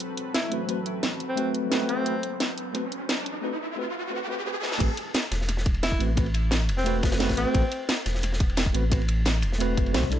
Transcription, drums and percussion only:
0.00 closed hi-hat medium
0.17 closed hi-hat medium
0.35 snare loud
0.35 closed hi-hat medium
0.52 closed hi-hat medium
0.69 closed hi-hat medium
0.86 closed hi-hat medium
1.03 snare loud
1.03 closed hi-hat medium
1.20 closed hi-hat medium
1.37 closed hi-hat medium
1.55 closed hi-hat medium
1.72 snare loud
1.72 closed hi-hat medium
1.89 closed hi-hat medium
2.06 closed hi-hat medium
2.23 closed hi-hat medium
2.40 snare loud
2.40 closed hi-hat medium
2.58 closed hi-hat medium
2.75 snare soft
2.75 closed hi-hat medium
2.92 closed hi-hat medium
3.09 snare loud
3.09 closed hi-hat medium
3.26 closed hi-hat medium
4.63 snare medium
4.72 snare medium
4.80 kick loud
4.80 closed hi-hat loud
4.80 crash loud
4.80 ride medium
4.97 closed hi-hat medium
4.97 ride medium
5.14 snare loud
5.14 closed hi-hat loud
5.14 ride medium
5.32 snare medium
5.32 closed hi-hat medium
5.32 ride medium
5.41 snare soft
5.49 snare soft
5.49 closed hi-hat loud
5.49 ride medium
5.57 snare soft
5.66 kick loud
5.66 closed hi-hat medium
5.66 ride medium
5.74 ride soft
5.83 snare loud
5.83 closed hi-hat medium
5.83 ride medium
5.92 kick medium
6.00 closed hi-hat medium
6.00 ride medium
6.17 kick loud
6.17 closed hi-hat medium
6.17 ride medium
6.26 ride soft
6.34 closed hi-hat medium
6.34 ride medium
6.51 snare loud
6.51 closed hi-hat medium
6.51 ride medium
6.69 closed hi-hat medium
6.69 ride medium
6.77 snare soft
6.86 closed hi-hat medium
6.86 ride loud
7.03 kick loud
7.03 snare loud
7.03 closed hi-hat medium
7.03 ride medium
7.12 snare loud
7.12 ride medium
7.20 snare loud
7.20 closed hi-hat medium
7.20 ride medium
7.29 kick medium
7.29 snare loud
7.29 snare soft
7.29 ride medium
7.37 closed hi-hat medium
7.37 ride medium
7.55 kick loud
7.55 closed hi-hat medium
7.55 ride loud
7.72 closed hi-hat medium
7.72 ride medium
7.89 snare loud
7.89 closed hi-hat medium
7.89 ride medium
8.06 snare medium
8.06 closed hi-hat medium
8.06 ride medium
8.15 snare soft
8.23 snare soft
8.23 closed hi-hat medium
8.23 ride medium
8.33 snare soft
8.40 kick loud
8.40 closed hi-hat medium
8.40 ride medium
8.49 ride soft
8.57 snare loud
8.57 closed hi-hat medium
8.57 ride medium
8.66 kick medium
8.75 closed hi-hat medium
8.75 ride medium
8.92 kick loud
8.92 closed hi-hat medium
8.92 ride medium
9.01 ride soft
9.08 closed hi-hat medium
9.08 ride medium
9.25 snare loud
9.25 closed hi-hat medium
9.25 ride medium
9.42 closed hi-hat medium
9.42 ride medium
9.52 snare soft
9.60 closed hi-hat medium
9.60 ride medium
9.77 kick loud
9.77 closed hi-hat medium
9.77 ride medium
9.86 ride soft
9.94 snare loud
9.94 closed hi-hat medium
9.94 ride medium
10.03 kick medium
10.03 snare soft
10.12 closed hi-hat medium
10.12 ride medium

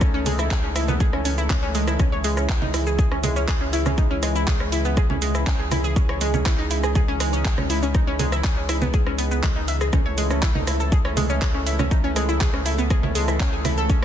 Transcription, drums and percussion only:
0.01 kick loud
0.01 cross-stick soft
0.01 shaker medium
0.26 open hi-hat loud
0.26 low conga medium
0.26 shaker medium
0.39 cross-stick medium
0.39 shaker medium
0.51 kick loud
0.51 clap loud
0.51 shaker medium
0.76 cross-stick medium
0.76 open hi-hat medium
0.76 shaker medium
0.88 low conga medium
0.88 shaker medium
1.00 kick loud
1.00 shaker medium
1.13 cross-stick soft
1.25 open hi-hat loud
1.25 shaker medium
1.38 shaker medium
1.50 kick loud
1.50 cross-stick medium
1.50 clap loud
1.50 low conga medium
1.50 shaker medium
1.75 open hi-hat medium
1.75 shaker medium
1.88 cross-stick soft
1.88 shaker medium
1.99 kick loud
1.99 cross-stick soft
1.99 low conga medium
1.99 shaker medium
2.24 open hi-hat loud
2.24 shaker medium
2.37 cross-stick soft
2.37 shaker medium
2.49 kick loud
2.49 clap loud
2.49 shaker medium
2.62 low conga medium
2.74 cross-stick medium
2.74 open hi-hat medium
2.74 shaker medium
2.87 shaker medium
2.99 kick loud
2.99 shaker medium
3.12 cross-stick soft
3.24 open hi-hat loud
3.24 low conga medium
3.24 shaker medium
3.36 shaker medium
3.48 kick loud
3.48 cross-stick medium
3.48 clap loud
3.48 shaker medium
3.73 open hi-hat loud
3.73 shaker medium
3.86 cross-stick soft
3.86 low conga medium
3.86 shaker medium
3.98 kick loud
3.98 shaker medium
4.23 cross-stick medium
4.23 open hi-hat loud
4.23 shaker medium
4.36 shaker medium
4.47 kick loud
4.47 clap loud
4.47 low conga medium
4.47 shaker medium
4.60 cross-stick medium
4.72 open hi-hat loud
4.72 shaker medium
4.85 shaker medium
4.97 kick loud
4.97 cross-stick medium
4.97 shaker medium
5.10 low conga medium
5.22 open hi-hat loud
5.22 shaker medium
5.35 cross-stick soft
5.35 shaker medium
5.47 kick loud
5.47 clap loud
5.47 shaker medium
5.71 cross-stick medium
5.71 open hi-hat loud
5.71 low conga medium
5.71 shaker medium
5.84 shaker medium
5.96 kick loud
5.96 shaker medium
6.09 cross-stick medium
6.21 open hi-hat loud
6.21 shaker medium
6.34 low conga medium
6.34 shaker medium
6.46 kick loud
6.46 cross-stick medium
6.46 clap loud
6.46 shaker medium
6.71 open hi-hat loud
6.71 shaker medium
6.83 cross-stick medium
6.83 shaker medium
6.95 kick loud
6.95 low conga loud
6.95 shaker medium
7.20 cross-stick medium
7.20 open hi-hat loud
7.20 shaker medium
7.33 shaker medium
7.45 kick loud
7.45 clap loud
7.45 shaker medium
7.58 cross-stick medium
7.58 low conga medium
7.70 open hi-hat loud
7.70 shaker medium
7.83 shaker medium
7.95 kick loud
7.95 cross-stick medium
7.95 shaker medium
8.19 open hi-hat loud
8.19 low conga medium
8.19 shaker medium
8.32 cross-stick medium
8.32 shaker medium
8.44 kick loud
8.44 clap loud
8.44 shaker medium
8.69 cross-stick medium
8.69 open hi-hat loud
8.69 shaker medium
8.82 low conga loud
8.82 shaker medium
8.94 kick loud
8.94 shaker medium
9.07 cross-stick medium
9.19 open hi-hat loud
9.19 shaker medium
9.31 shaker medium
9.43 kick loud
9.43 cross-stick medium
9.43 clap loud
9.43 low conga loud
9.43 shaker medium
9.68 open hi-hat medium
9.68 shaker medium
9.81 cross-stick medium
9.81 shaker medium
9.93 kick loud
9.93 cross-stick medium
9.93 low conga loud
9.93 shaker medium
10.18 open hi-hat loud
10.18 shaker medium
10.31 cross-stick medium
10.31 shaker medium
10.43 kick loud
10.43 clap loud
10.43 shaker medium
10.55 low conga loud
10.67 cross-stick medium
10.67 open hi-hat medium
10.67 shaker medium
10.80 shaker medium
10.92 kick loud
10.92 shaker medium
11.05 cross-stick medium
11.17 open hi-hat loud
11.17 low conga loud
11.17 shaker medium
11.30 shaker medium
11.42 kick loud
11.42 cross-stick medium
11.42 clap loud
11.42 shaker medium
11.67 open hi-hat medium
11.67 shaker medium
11.79 cross-stick medium
11.79 low conga loud
11.79 shaker medium
11.91 kick loud
11.91 shaker medium
12.16 cross-stick medium
12.16 open hi-hat loud
12.16 shaker medium
12.29 shaker medium
12.41 kick loud
12.41 clap loud
12.41 low conga loud
12.41 shaker medium
12.54 cross-stick medium
12.66 open hi-hat medium
12.66 shaker medium
12.79 shaker medium
12.90 kick loud
12.90 cross-stick medium
12.90 shaker medium
13.03 low conga medium
13.15 open hi-hat loud
13.15 shaker medium
13.28 cross-stick medium
13.28 shaker medium
13.40 kick loud
13.40 clap loud
13.40 shaker medium
13.65 cross-stick medium
13.65 open hi-hat medium
13.65 low conga loud
13.65 shaker medium
13.78 shaker medium
13.90 kick loud
13.90 shaker medium

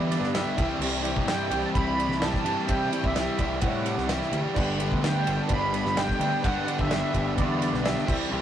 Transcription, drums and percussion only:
0.12 snare soft
0.12 ride medium
0.24 snare soft
0.35 snare loud
0.35 ride loud
0.58 kick loud
0.58 ride medium
0.82 crash loud
1.05 ride medium
1.17 kick medium
1.28 snare loud
1.28 ride loud
1.51 ride medium
1.75 kick loud
1.75 ride loud
2.00 ride medium
2.11 snare soft
2.22 snare loud
2.22 ride loud
2.34 kick medium
2.34 snare soft
2.46 ride medium
2.69 kick loud
2.69 ride loud
2.93 ride medium
3.04 kick medium
3.16 snare loud
3.16 ride loud
3.39 kick medium
3.39 ride medium
3.61 kick loud
3.61 ride loud
3.86 snare soft
3.86 ride medium
3.98 snare soft
4.09 snare loud
4.09 ride loud
4.22 snare soft
4.33 ride medium
4.56 kick loud
4.56 crash loud
4.80 ride medium
4.92 kick medium
5.04 snare loud
5.04 ride loud
5.27 ride medium
5.49 kick loud
5.49 ride loud
5.74 snare soft
5.74 ride medium
5.86 snare soft
5.97 snare loud
5.97 ride loud
6.09 kick medium
6.09 snare soft
6.21 ride medium
6.44 kick loud
6.44 ride loud
6.68 ride medium
6.79 kick medium
6.91 snare loud
6.91 ride loud
7.14 kick medium
7.14 ride medium
7.38 kick loud
7.38 ride loud
7.62 snare soft
7.62 ride medium
7.74 snare soft
7.85 snare loud
7.85 ride loud
7.98 snare soft
8.08 kick loud
8.08 crash loud

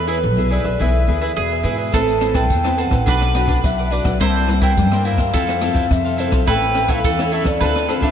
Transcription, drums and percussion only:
1.94 kick medium
1.94 cross-stick medium
1.94 closed hi-hat medium
2.08 closed hi-hat soft
2.21 cross-stick medium
2.21 closed hi-hat soft
2.35 kick medium
2.35 cross-stick medium
2.35 closed hi-hat soft
2.50 kick medium
2.50 closed hi-hat medium
2.65 cross-stick medium
2.65 closed hi-hat soft
2.78 closed hi-hat medium
2.91 kick medium
2.91 cross-stick medium
3.07 kick medium
3.07 closed hi-hat medium
3.22 cross-stick medium
3.35 cross-stick medium
3.35 closed hi-hat soft
3.48 kick medium
3.64 kick medium
3.64 cross-stick medium
3.64 closed hi-hat medium
3.92 closed hi-hat soft
4.05 kick medium
4.05 cross-stick medium
4.05 closed hi-hat soft
4.21 kick medium
4.21 cross-stick medium
4.21 closed hi-hat medium
4.35 closed hi-hat soft
4.48 cross-stick medium
4.48 closed hi-hat soft
4.62 kick medium
4.62 cross-stick medium
4.62 closed hi-hat soft
4.77 kick medium
4.77 closed hi-hat medium
4.92 cross-stick medium
5.05 closed hi-hat soft
5.18 kick medium
5.18 cross-stick medium
5.34 kick medium
5.34 closed hi-hat medium
5.49 cross-stick medium
5.49 closed hi-hat soft
5.62 cross-stick medium
5.62 closed hi-hat soft
5.75 kick medium
5.75 closed hi-hat soft
5.91 kick medium
5.91 cross-stick medium
5.91 closed hi-hat medium
6.05 closed hi-hat soft
6.19 closed hi-hat soft
6.32 kick medium
6.32 cross-stick medium
6.32 closed hi-hat soft
6.48 kick medium
6.48 cross-stick medium
6.48 closed hi-hat medium
6.62 closed hi-hat soft
6.75 cross-stick medium
6.75 closed hi-hat soft
6.88 kick medium
6.88 cross-stick medium
6.88 closed hi-hat soft
7.04 kick medium
7.04 closed hi-hat medium
7.19 cross-stick medium
7.19 closed hi-hat soft
7.32 closed hi-hat soft
7.45 kick medium
7.45 cross-stick medium
7.61 kick medium
7.61 closed hi-hat medium
7.76 cross-stick medium
7.89 cross-stick medium
7.89 closed hi-hat soft
8.02 kick medium

